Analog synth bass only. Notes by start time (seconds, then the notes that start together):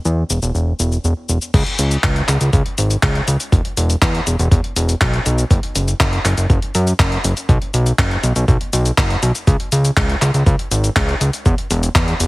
0.05 E2
0.30 E1
0.42 E1
0.55 E1
0.80 E1
1.04 E1
1.29 E1
1.54 C#2
1.79 C#2
2.04 C#2
2.28 C#2
2.41 C#2
2.53 C#2
2.78 G#1
3.03 C#2
3.28 C#2
3.52 E1
3.77 E1
4.02 E2
4.27 E1
4.39 E1
4.52 E1
4.76 E1
5.01 B1
5.26 B1
5.51 F#1
5.76 F#1
6.00 F#1
6.25 F#1
6.38 F#1
6.50 F#1
6.75 F#2
6.99 F#1
7.24 F#1
7.49 B1
7.74 B1
7.99 F#1
8.23 B1
8.36 B1
8.48 B1
8.73 B1
8.98 F#1
9.23 B1
9.47 C#2
9.72 C#2
9.97 C#2
10.22 C#2
10.34 C#2
10.46 C#2
10.71 G#1
10.96 C#2
11.21 C#2
11.46 E1
11.71 E1
11.95 E2
12.20 E1